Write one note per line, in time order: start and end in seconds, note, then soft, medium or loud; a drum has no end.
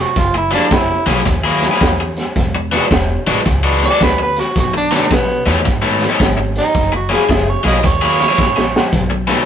0.01 0.20 F#4 medium
0.16 0.55 F#1 medium
0.16 0.35 F4 medium
0.16 kick medium
0.16 snare soft
0.16 closed hi-hat medium
0.35 0.54 E4 medium
0.35 muted overdriven electric guitar stroke soft
0.51 0.64 F#3 medium
0.51 0.64 A#3 medium
0.51 0.74 D4 medium
0.51 0.65 E4 medium
0.51 0.65 G#4 medium
0.51 snare soft
0.51 closed hi-hat medium
0.71 0.96 F#1 medium
0.71 1.06 E4 medium
0.71 muted overdriven electric guitar stroke soft
0.71 kick medium
0.71 snare loud
0.71 closed hi-hat medium
1.06 1.20 B1 medium
1.06 1.19 F#3 medium
1.06 1.19 A#3 medium
1.06 1.20 E4 medium
1.06 1.20 G#4 medium
1.06 snare soft
1.06 closed hi-hat medium
1.26 1.65 D#2 medium
1.26 muted overdriven electric guitar stroke soft
1.26 kick medium
1.26 snare soft
1.26 closed hi-hat medium
1.44 1.65 F#3 medium
1.44 1.65 A#3 medium
1.44 1.65 E4 medium
1.44 1.64 G#4 medium
1.61 snare soft
1.61 closed hi-hat medium
1.71 1.87 F#3 medium
1.71 1.87 A#3 medium
1.71 1.87 E4 medium
1.71 1.86 G#4 medium
1.81 2.20 E2 medium
1.81 kick medium
1.81 snare loud
1.81 closed hi-hat medium
2.00 muted overdriven electric guitar stroke soft
2.17 snare soft
2.17 closed hi-hat medium
2.36 2.75 E1 medium
2.36 kick medium
2.36 snare soft
2.36 closed hi-hat medium
2.55 muted overdriven electric guitar stroke soft
2.72 2.84 E3 medium
2.72 2.85 G#3 medium
2.72 2.85 D4 medium
2.72 2.85 F#4 medium
2.72 snare soft
2.72 closed hi-hat medium
2.91 3.16 E1 medium
2.91 muted overdriven electric guitar stroke soft
2.91 kick medium
2.91 snare loud
2.91 closed hi-hat medium
3.26 3.41 A1 medium
3.26 3.39 E3 medium
3.26 3.39 G#3 medium
3.26 3.39 D4 medium
3.26 3.40 F#4 medium
3.26 snare soft
3.26 closed hi-hat medium
3.46 3.85 C#2 medium
3.46 muted overdriven electric guitar stroke soft
3.46 kick medium
3.46 snare soft
3.46 closed hi-hat medium
3.63 3.84 E3 medium
3.63 3.84 G#3 medium
3.63 3.84 D4 medium
3.63 3.84 F#4 medium
3.82 4.01 D5 loud
3.82 snare soft
3.82 closed hi-hat medium
3.91 4.07 E3 medium
3.91 4.06 G#3 medium
3.91 4.06 D4 medium
3.91 4.06 F#4 medium
4.01 4.40 D2 medium
4.01 4.20 B4 medium
4.01 kick medium
4.01 snare loud
4.01 closed hi-hat medium
4.19 muted overdriven electric guitar stroke soft
4.23 4.41 B4 medium
4.36 4.56 F#4 medium
4.36 snare soft
4.36 closed hi-hat medium
4.56 4.95 B1 medium
4.56 4.75 F#4 medium
4.56 kick medium
4.56 snare soft
4.56 closed hi-hat medium
4.74 4.93 D4 medium
4.74 muted overdriven electric guitar stroke soft
4.91 5.04 B2 medium
4.91 5.04 D#3 medium
4.91 5.04 A3 medium
4.91 5.04 C#4 medium
4.91 5.14 D4 medium
4.91 snare soft
4.91 closed hi-hat medium
5.11 5.36 B1 medium
5.11 5.46 B3 medium
5.11 muted overdriven electric guitar stroke soft
5.11 kick medium
5.11 snare loud
5.11 closed hi-hat medium
5.46 5.60 E2 medium
5.46 5.58 B2 medium
5.46 5.59 D#3 medium
5.46 5.59 A3 medium
5.46 5.59 C#4 medium
5.46 snare soft
5.46 closed hi-hat soft
5.65 6.04 G#2 medium
5.65 muted overdriven electric guitar stroke soft
5.65 kick medium
5.65 snare soft
5.65 closed hi-hat medium
5.82 6.03 B2 medium
5.82 6.03 D#3 medium
5.82 6.03 A3 medium
5.82 6.03 C#4 medium
6.01 snare soft
6.01 closed hi-hat medium
6.09 6.25 B2 medium
6.09 6.25 D#3 medium
6.09 6.25 A3 medium
6.09 6.25 C#4 medium
6.20 6.59 G#1 medium
6.20 kick medium
6.20 snare loud
6.20 closed hi-hat medium
6.37 muted overdriven electric guitar stroke soft
6.55 6.93 D#4 medium
6.55 snare soft
6.55 closed hi-hat medium
6.75 7.14 F#1 medium
6.75 kick medium
6.75 snare soft
6.75 closed hi-hat medium
6.92 7.12 F#4 medium
6.92 muted overdriven electric guitar stroke soft
7.09 7.22 F#3 medium
7.09 7.22 A#3 medium
7.09 7.23 E4 medium
7.09 7.23 G#4 medium
7.09 snare soft
7.09 closed hi-hat medium
7.14 7.51 G#4 medium
7.29 7.54 F#1 medium
7.29 muted overdriven electric guitar stroke soft
7.29 kick medium
7.29 snare loud
7.29 closed hi-hat medium
7.50 7.66 C#5 medium
7.63 7.79 B1 medium
7.63 7.77 F#3 medium
7.63 7.77 A#3 medium
7.63 7.77 E4 medium
7.63 7.77 G#4 medium
7.63 7.84 D#5 medium
7.63 snare soft
7.63 closed hi-hat medium
7.83 8.23 D#2 medium
7.83 8.91 C#5 loud
7.83 muted overdriven electric guitar stroke soft
7.83 kick medium
7.83 snare soft
7.83 closed hi-hat medium
8.02 8.23 F#3 medium
8.02 8.22 A#3 medium
8.02 8.22 E4 medium
8.02 8.22 G#4 medium
8.19 snare soft
8.19 closed hi-hat medium
8.29 8.44 F#3 medium
8.29 8.44 A#3 medium
8.29 8.44 E4 medium
8.29 8.44 G#4 medium
8.38 8.77 A#1 medium
8.38 kick medium
8.38 snare medium
8.56 muted overdriven electric guitar stroke soft
8.56 snare medium
8.76 snare medium
8.93 9.32 B1 medium
8.93 kick medium
8.93 snare soft
8.93 closed hi-hat medium
9.10 muted overdriven electric guitar stroke medium
9.27 9.41 B2 medium
9.27 9.41 D#3 medium
9.27 9.41 A3 loud
9.27 9.41 C#4 medium
9.27 snare soft
9.27 closed hi-hat medium